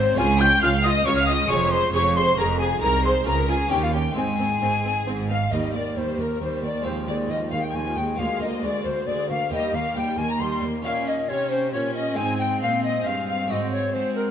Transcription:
Already playing: double bass section G#1, cello section G#2, harpsichord G#3 C4 F4, violin section C4 C5, flute C5
0.14 cello section C#2, harpsichord G#3 C#4 F4, violin section G#4, flute G#5
0.19 double bass section C#2, harpsichord C#2, viola section F4, violin section G#5
0.39 viola section F4, violin section G5 G6, flute G6
0.61 cello section C#2, harpsichord C#2, double bass section C#2, viola section F4, violin section F5 F6, flute F6
0.84 viola section F4, violin section D#5 D#6, flute D#6
1.05 cello section C#2, harpsichord C#2, double bass section C#2, viola section F4, violin section C#5 C#6, flute C#6
1.16 violin section F5 F6, flute F6
1.27 viola section F4, violin section D#5 D#6, flute D#6
1.45 cello section F2, harpsichord G#3 C#4 G#4, flute C#6
1.50 double bass section F1, harpsichord F2, viola section G#4, violin section C#5 C#6
1.72 viola section G#4, violin section C5 C6, flute C6
1.93 double bass section F1, cello section F2, harpsichord F2, viola section G#4, violin section C#5 C#6, flute C#6
2.16 viola section G#4, violin section C5 C6, flute C6
2.38 double bass section F1, harpsichord F2, cello section F2, viola section G#4, violin section A#4 A#5, flute A#5
2.59 violin section G#4 G#5, viola section G#4, flute G#5
2.78 harpsichord G#3 D#4 G#4
2.82 cello section C2, harpsichord C2, double bass section C2, viola section G#4, violin section A#4 A#5, flute A#5
3.04 viola section G#4, violin section C5 C6, flute C6
3.23 cello section C#2, harpsichord C#2 C#4 G#4, double bass section C#2, viola section F4
3.28 violin section A#4 A#5, flute A#5
3.49 viola section F4, violin section G#4 G#5, flute G#5
3.67 harpsichord A#3 C#4 D#4, violin section G5, flute G5
3.71 cello section D#2, harpsichord D#2, double bass section D#2, viola section C#4, violin section G4
3.82 violin section F4 F5, flute F5
3.93 viola section C#4, violin section G4 G5, flute G5
4.12 cello section G#2, harpsichord G#3 C4 D#4, violin section G#4
4.16 double bass section G#1, harpsichord G#2, viola section C4, violin section G#5, flute G#5
4.39 viola section C4
4.61 double bass section G#1, cello section G#2, harpsichord G#2, viola section C4
4.85 viola section C4
5.07 double bass section G#1, cello section G#2, harpsichord G#2, viola section C4
5.30 viola section C4, violin section F5, flute F5
5.50 cello section D#2, harpsichord D#2 A#3 D#4, viola section G3, violin section G4 D#5, flute D#5
5.74 cello section D#2, harpsichord D#2, viola section A#3, violin section A#4 D5, flute D5
5.96 cello section D#2, harpsichord D#2, viola section G3, violin section G4 C5, flute C5
6.18 cello section D#2, harpsichord D#2, viola section A#3, violin section A#4, flute A#4
6.41 cello section D#2, harpsichord D#2, viola section G3, violin section G4 C5, flute C5
6.63 harpsichord D#2, cello section D#2, viola section A#3, violin section A#4 D5, flute D5
6.81 harpsichord G#3 C4 F4, violin section C5
6.85 cello section D#2, harpsichord D#2, viola section F3, violin section F4, flute C5
7.07 cello section D#2, harpsichord D#2, viola section G#3, violin section D#4 D5, flute D5
7.29 cello section D#2, harpsichord D#2, viola section F3, violin section F4 D#5, flute D#5
7.51 cello section D#2, harpsichord D#2, viola section G#3, violin section D#4 F5, flute F5
7.62 violin section G5, flute G5
7.74 cello section D#2, harpsichord D#2, viola section F3, violin section F4 G#5, flute G#5
7.96 cello section D#2, harpsichord D#2, viola section G#3, violin section D#4 G5, flute G5
8.15 cello section D2, harpsichord G#3 A#3 F4, viola section G#3, violin section G#4 F5, flute F5
8.20 harpsichord D2
8.40 cello section D2, harpsichord D2, viola section A#3, violin section A#4 D#5, flute D#5
8.62 cello section D2, harpsichord D2, viola section G#3, violin section G#4 D5, flute D5
8.84 cello section D2, harpsichord D2, viola section A#3, violin section A#4 C5, flute C5
9.06 cello section D2, harpsichord D2, viola section G#3, violin section G#4 D5, flute D5
9.28 cello section D2, harpsichord D2, viola section A#3, violin section A#4 F5, flute F5
9.49 cello section D#2, harpsichord D#2 A#3 G4, viola section G3, violin section G4 D#5, flute D#5
9.73 cello section D#2, harpsichord D#2, viola section A#3, violin section A#4 F5, flute F5
9.95 cello section D#2, harpsichord D#2, viola section G3, violin section G4 G5, flute G5
10.17 cello section D#2, harpsichord D#2, viola section A#3, violin section A#4 G#5, flute G#5
10.31 violin section A#5, flute A#5
10.40 cello section D#2, harpsichord D#2, viola section G3, violin section G4 C6, flute C6
10.62 cello section D#2, harpsichord D#2, viola section A#3, violin section A#4
10.82 cello section A#2, harpsichord A#2 C#4 D#4, viola section C#4, violin section G4 F5, flute F5
11.06 violin section D#5, flute D#5
11.29 cello section C3, harpsichord C3, viola section C#4, violin section G4 C#5, flute C#5
11.50 flute C5, violin section C5
11.73 cello section A#2, harpsichord A#2, viola section C#4, violin section G4 C#5, flute C#5
11.95 violin section D#5, flute D#5
12.14 cello section G#2, harpsichord G#3 C4 D#4, viola section C4, flute G#5
12.18 harpsichord G#2, violin section G#4 G#5
12.38 flute G5, violin section G5
12.61 cello section A#2, harpsichord A#2, flute F5, violin section F5
12.83 violin section D#5, flute D#5
13.05 cello section G2, harpsichord G2, violin section F5, flute F5
13.27 violin section F5, flute F5
13.46 cello section G#2, harpsichord G#3 C4 F#4, viola section C4, violin section F#4 D#5
13.51 harpsichord G#2, flute D#5
13.72 flute C#5, violin section C#5
13.93 cello section G#3, harpsichord G#3, viola section C4, violin section F#4 C5, flute C5
14.16 flute A#4, violin section A#4

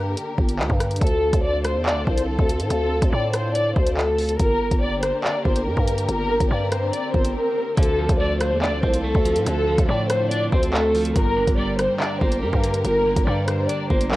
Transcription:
Already playing: 808-style bass G2, string section D3 A#3 G4 A#4
0.17 closed hi-hat
0.38 808-style bass G1, kick
0.49 closed hi-hat
0.59 808-style bass D2, clap
0.70 808-style bass G2, kick
0.80 cross-stick, closed hi-hat
0.91 closed hi-hat
0.96 closed hi-hat
1.01 808-style bass D2, string section C4 F4 A4, violin section A4, kick, closed hi-hat
1.07 closed hi-hat
1.33 808-style bass D2, kick, closed hi-hat
1.44 violin section D5
1.65 violin section C5, cross-stick, closed hi-hat
1.75 808-style bass E2
1.86 violin section D5, clap
1.91 808-style bass D2
2.07 808-style bass C2, violin section C5, kick
2.18 closed hi-hat
2.28 violin section A4
2.39 808-style bass D2, kick
2.49 closed hi-hat
2.60 808-style bass A2, closed hi-hat
2.70 808-style bass D2, violin section A4, closed hi-hat
3.02 808-style bass D2, kick, closed hi-hat
3.13 808-style bass A2, violin section D5
3.34 violin section C5, cross-stick, closed hi-hat
3.55 violin section D5, closed hi-hat
3.76 808-style bass D2, violin section C5, kick
3.87 closed hi-hat
3.97 violin section A4, clap
4.18 open hi-hat
4.29 closed hi-hat
4.39 808-style bass G1, string section D3 A#3 G4 A#4, violin section A#4, kick, closed hi-hat, swell
4.71 808-style bass G1, kick, closed hi-hat
4.82 violin section D5
5.03 violin section C5, cross-stick, closed hi-hat
5.24 violin section D5, clap
5.45 808-style bass G1, violin section C5, kick
5.56 closed hi-hat
5.66 808-style bass G2, violin section A#4
5.77 808-style bass G2, kick
5.87 closed hi-hat
5.98 closed hi-hat
6.08 808-style bass G1, violin section A#4, closed hi-hat
6.40 808-style bass G1, kick, closed hi-hat
6.51 808-style bass G2, violin section D5
6.72 violin section C5, cross-stick, closed hi-hat
6.93 violin section D5, closed hi-hat
7.14 808-style bass G1, violin section C5, kick
7.25 closed hi-hat
7.35 violin section A#4
7.77 808-style bass D2, string section D3 C4 F4 A4, clean electric guitar D3, violin section A4, kick, closed hi-hat
7.83 closed hi-hat
7.99 clean electric guitar F3
8.09 808-style bass D2, kick, closed hi-hat
8.20 clean electric guitar A3, violin section D5
8.41 violin section C5, cross-stick, closed hi-hat
8.51 808-style bass E2
8.62 clean electric guitar D4, violin section D5, clap
8.67 808-style bass D2
8.83 808-style bass C2, clean electric guitar C4, violin section C5, kick
8.94 closed hi-hat
9.04 clean electric guitar A3, violin section A4
9.15 808-style bass D2, kick
9.25 clean electric guitar F3, closed hi-hat
9.36 808-style bass A2, closed hi-hat
9.46 808-style bass D2, clean electric guitar D3, violin section A4, closed hi-hat
9.67 clean electric guitar F3
9.78 808-style bass D2, kick, closed hi-hat
9.89 808-style bass A2, clean electric guitar A3, violin section D5
10.10 violin section C5, cross-stick, closed hi-hat
10.31 clean electric guitar D4, violin section D5, closed hi-hat
10.52 808-style bass D2, clean electric guitar C4, violin section C5, kick
10.63 closed hi-hat
10.73 clean electric guitar A3, violin section A4, clap
10.95 clean electric guitar F3, open hi-hat
11.05 closed hi-hat
11.16 808-style bass G1, clean electric guitar G2, string section A#3 G4 A#4, violin section A#4, kick, closed hi-hat
11.37 clean electric guitar D3
11.47 808-style bass G1, kick, closed hi-hat
11.58 clean electric guitar G3, violin section D5
11.79 violin section C5, cross-stick, closed hi-hat
12.00 clean electric guitar D4, violin section D5, clap
12.21 808-style bass G1, clean electric guitar A#3, violin section C5, kick
12.32 closed hi-hat
12.42 808-style bass G2, clean electric guitar G3, violin section A#4
12.53 808-style bass G2, kick
12.64 clean electric guitar D3, closed hi-hat
12.74 closed hi-hat
12.85 808-style bass G1, clean electric guitar G2, violin section A#4, closed hi-hat
13.06 clean electric guitar D3
13.16 808-style bass G1, kick, closed hi-hat
13.27 808-style bass G2, clean electric guitar G3, violin section D5
13.48 violin section C5, cross-stick, closed hi-hat
13.69 clean electric guitar D4, violin section D5, closed hi-hat
13.90 808-style bass G1, clean electric guitar A#3, violin section C5, kick
14.01 closed hi-hat
14.11 808-style bass D2, clean electric guitar G3, violin section A#4, clap

